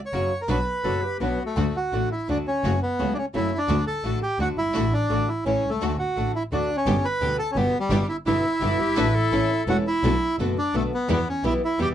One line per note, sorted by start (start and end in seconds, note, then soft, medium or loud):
0.06 0.42 C#5 medium
0.12 0.28 F#1 medium
0.12 0.30 C#3 medium
0.12 0.30 F#3 medium
0.12 0.30 A#3 medium
0.12 0.28 C#4 soft
0.12 0.31 C#4 medium
0.12 0.28 F#4 soft
0.12 0.31 F#4 medium
0.12 0.28 A#4 soft
0.42 0.49 A#4 medium
0.48 0.64 B1 medium
0.48 0.57 B2 medium
0.48 0.58 F#3 medium
0.48 0.58 B3 medium
0.48 0.63 D4 medium
0.48 0.58 D4 medium
0.48 0.63 F#4 medium
0.48 0.58 F#4 medium
0.48 0.64 B4 medium
0.48 1.17 B4 medium
0.84 1.00 F#1 medium
0.84 1.01 B2 medium
0.84 1.02 F#3 medium
0.84 1.02 B3 medium
0.84 0.99 D4 medium
0.84 1.02 D4 medium
0.84 0.99 F#4 soft
0.84 1.02 F#4 medium
0.84 1.04 A4 medium
0.84 0.99 B4 medium
1.03 1.23 G4 medium
1.20 1.36 B1 medium
1.20 1.38 B2 medium
1.20 1.38 F#3 medium
1.20 1.38 B3 medium
1.20 1.43 B3 medium
1.20 1.35 D4 soft
1.20 1.38 D4 medium
1.20 1.36 F#4 soft
1.20 1.57 F#4 medium
1.20 1.38 F#4 medium
1.20 1.36 B4 soft
1.46 1.76 A3 medium
1.56 1.72 D2 medium
1.56 1.65 D3 medium
1.56 1.72 A3 medium
1.56 1.66 A3 medium
1.56 1.72 D4 medium
1.56 1.66 D4 medium
1.56 1.72 F#4 medium
1.56 1.66 F#4 medium
1.76 2.09 F#4 medium
1.92 2.08 A1 medium
1.92 2.10 D3 medium
1.92 2.08 A3 soft
1.92 2.10 A3 medium
1.92 2.08 D4 soft
1.92 2.10 D4 medium
1.92 2.08 F#4 medium
1.92 2.10 F#4 medium
2.12 2.28 E4 medium
2.28 2.44 D2 medium
2.28 2.45 D3 medium
2.28 2.46 A3 medium
2.28 2.44 A3 soft
2.28 2.46 D4 medium
2.28 2.44 D4 soft
2.28 2.38 D4 medium
2.28 2.46 F#4 medium
2.28 2.44 F#4 medium
2.48 2.80 C#4 medium
2.64 2.79 F#1 medium
2.64 2.73 C#3 medium
2.64 2.73 F#3 medium
2.64 2.79 A3 medium
2.64 2.73 A3 medium
2.64 2.79 C#4 medium
2.64 2.73 C#4 medium
2.64 2.79 F#4 medium
2.64 2.74 F#4 medium
2.83 3.14 B3 medium
2.99 3.14 C#2 medium
2.99 3.16 C#3 medium
2.99 3.16 F#3 medium
2.99 3.14 A3 soft
2.99 3.16 A3 medium
2.99 3.14 C#4 soft
2.99 3.16 C#4 medium
2.99 3.14 F#4 medium
2.99 3.16 F#4 medium
3.14 3.17 D4 medium
3.18 3.25 C#4 medium
3.33 3.49 F#1 medium
3.33 3.51 C#3 medium
3.33 3.51 F#3 medium
3.33 3.48 A3 soft
3.33 3.51 A3 medium
3.33 3.49 C#4 soft
3.33 3.51 C#4 medium
3.33 3.58 E4 medium
3.33 3.49 F#4 soft
3.33 3.51 F#4 medium
3.58 3.85 D4 medium
3.68 3.83 D2 medium
3.68 3.78 D3 loud
3.68 3.83 A3 medium
3.68 3.78 A3 medium
3.68 3.83 D4 medium
3.68 3.78 D4 medium
3.68 3.83 F#4 medium
3.68 3.78 F#4 medium
3.87 4.19 A4 medium
4.04 4.19 A1 medium
4.04 4.21 D3 medium
4.04 4.18 A3 soft
4.04 4.21 A3 medium
4.04 4.19 D4 soft
4.04 4.21 D4 medium
4.04 4.19 F#4 medium
4.04 4.21 F#4 medium
4.23 4.38 G4 medium
4.39 4.54 D2 medium
4.39 4.56 D3 medium
4.39 4.54 A3 soft
4.39 4.56 A3 medium
4.39 4.54 D4 soft
4.39 4.56 D4 medium
4.39 4.54 F#4 medium
4.39 4.56 F#4 medium
4.39 4.49 F#4 loud
4.57 4.74 G1 medium
4.57 4.93 E4 loud
4.74 4.89 A1 medium
4.74 4.83 D3 medium
4.74 4.89 A3 medium
4.74 4.84 A3 medium
4.74 4.89 D4 medium
4.74 4.84 D4 medium
4.74 4.89 F#4 medium
4.74 4.84 F#4 medium
4.93 5.29 D4 loud
5.09 5.25 A1 medium
5.09 5.27 D3 medium
5.09 5.24 A3 medium
5.09 5.27 A3 medium
5.09 5.24 D4 soft
5.09 5.27 D4 medium
5.09 5.25 F#4 medium
5.09 5.27 F#4 medium
5.28 5.44 E4 medium
5.45 5.60 A1 medium
5.45 5.62 E3 medium
5.45 5.60 A3 soft
5.45 5.63 A3 medium
5.45 5.60 C#4 soft
5.45 5.70 C#4 medium
5.45 5.63 C#4 medium
5.45 5.60 E4 soft
5.45 5.63 E4 medium
5.63 5.81 C2 medium
5.70 5.97 A3 medium
5.81 5.96 D2 medium
5.81 5.90 D3 medium
5.81 5.96 A3 medium
5.81 5.90 A3 medium
5.81 5.96 D4 medium
5.81 5.90 D4 medium
5.81 5.96 F#4 medium
5.81 5.91 F#4 medium
5.99 6.32 F#4 medium
6.16 6.32 A1 medium
6.16 6.34 D3 medium
6.16 6.31 A3 medium
6.16 6.34 A3 medium
6.16 6.31 D4 soft
6.16 6.34 D4 medium
6.16 6.32 F#4 medium
6.16 6.34 F#4 medium
6.36 6.43 E4 medium
6.51 6.66 D2 medium
6.51 6.69 D3 medium
6.51 6.66 A3 soft
6.51 6.69 A3 medium
6.51 6.66 D4 soft
6.51 6.69 D4 medium
6.51 6.76 D4 medium
6.51 6.66 F#4 soft
6.51 6.69 F#4 medium
6.77 7.06 C#4 loud
6.86 7.01 G1 medium
6.86 6.95 B2 medium
6.86 6.95 D3 medium
6.86 6.95 G3 medium
6.86 7.01 B3 medium
6.86 6.95 B3 loud
6.86 7.01 D4 medium
6.86 7.01 G4 medium
6.86 6.96 G4 medium
7.05 7.37 B4 loud
7.20 7.36 D2 medium
7.20 7.38 B2 medium
7.20 7.38 D3 medium
7.20 7.38 G3 medium
7.20 7.36 B3 medium
7.20 7.38 B3 medium
7.20 7.36 D4 medium
7.20 7.36 G4 medium
7.20 7.38 G4 medium
7.39 7.51 A4 loud
7.52 7.57 C#4 medium
7.56 7.71 G1 medium
7.56 7.73 B2 medium
7.56 7.73 D3 medium
7.56 7.73 G3 medium
7.56 7.71 B3 medium
7.56 7.78 B3 loud
7.56 7.73 B3 medium
7.56 7.71 D4 medium
7.56 7.71 G4 medium
7.56 7.73 G4 medium
7.80 8.07 G3 loud
7.90 8.05 G1 loud
7.90 8.00 B2 medium
7.90 8.00 D3 medium
7.90 8.00 G3 loud
7.90 8.00 B3 loud
7.90 8.05 D4 medium
7.90 8.06 E4 medium
7.90 8.01 E4 loud
7.90 8.06 G4 medium
8.09 8.17 E4 medium
8.25 8.41 G1 medium
8.25 8.43 B2 medium
8.25 8.43 D3 medium
8.25 8.44 G3 medium
8.25 8.44 B3 medium
8.25 8.41 D4 medium
8.25 8.41 E4 medium
8.25 9.64 E4 loud
8.25 8.44 E4 medium
8.25 8.41 G4 medium
8.61 8.76 G1 medium
8.61 8.78 B2 medium
8.61 8.78 D3 medium
8.61 8.78 G3 medium
8.61 8.79 B3 medium
8.61 8.76 D4 medium
8.61 8.76 E4 soft
8.61 8.81 E4 loud
8.61 8.79 E4 medium
8.61 8.76 G4 medium
8.78 8.96 G1 medium
8.78 8.96 G4 loud
8.96 9.11 A1 loud
8.96 9.05 D3 medium
8.96 9.06 A3 loud
8.96 9.11 D4 medium
8.96 9.06 D4 medium
8.96 9.11 F#4 medium
8.96 9.06 F#4 loud
8.96 9.11 A4 medium
8.96 9.16 B4 loud
9.15 9.86 A4 loud
9.31 9.47 A1 medium
9.31 9.49 E3 medium
9.31 9.49 A3 medium
9.31 9.47 C#4 medium
9.31 9.49 C#4 medium
9.31 9.47 E4 medium
9.31 9.49 E4 medium
9.31 9.47 A4 medium
9.67 9.82 E1 medium
9.67 9.84 E3 medium
9.67 9.85 A3 medium
9.67 9.83 C#4 medium
9.67 9.85 C#4 medium
9.67 9.83 E4 soft
9.67 9.85 E4 medium
9.67 9.77 F#4 loud
9.67 9.83 A4 medium
9.87 10.36 E4 loud
10.03 10.18 B1 loud
10.03 10.13 B2 medium
10.03 10.13 D3 medium
10.03 10.13 A3 medium
10.03 10.18 B3 medium
10.03 10.13 B3 medium
10.03 10.18 D4 medium
10.03 10.13 F#4 loud
10.03 10.19 A4 medium
10.39 10.54 F#1 medium
10.39 10.56 B2 medium
10.39 10.56 D3 medium
10.39 10.56 A3 medium
10.39 10.54 B3 medium
10.39 10.56 B3 medium
10.39 10.54 D4 soft
10.39 10.57 F#4 medium
10.39 10.54 A4 medium
10.58 10.75 D4 medium
10.74 10.88 B1 medium
10.74 10.91 B2 medium
10.74 10.91 D3 medium
10.74 10.91 A3 medium
10.74 10.83 A3 loud
10.74 10.88 B3 medium
10.74 10.91 B3 medium
10.74 10.88 D4 soft
10.74 10.91 F#4 medium
10.74 10.88 A4 medium
10.94 11.09 B3 loud
11.08 11.23 E2 medium
11.08 11.17 B2 medium
11.08 11.18 E3 medium
11.08 11.18 G3 medium
11.08 11.23 B3 medium
11.08 11.18 B3 loud
11.08 11.28 B3 loud
11.08 11.24 E4 medium
11.08 11.18 E4 loud
11.08 11.24 G4 medium
11.29 11.44 C#4 medium
11.43 11.58 B1 medium
11.43 11.60 B2 medium
11.43 11.61 E3 medium
11.43 11.60 G3 medium
11.43 11.58 B3 medium
11.43 11.61 B3 medium
11.43 11.58 E4 medium
11.43 11.61 E4 medium
11.43 11.53 E4 loud
11.43 11.58 G4 medium
11.65 11.79 E4 loud
11.79 11.93 E2 medium
11.79 11.94 B2 medium
11.79 11.94 E3 medium
11.79 11.94 G3 medium
11.79 11.93 B3 medium
11.79 11.94 B3 medium
11.79 11.93 E4 soft
11.79 11.94 E4 medium
11.79 11.93 G4 medium
11.79 11.89 G4 loud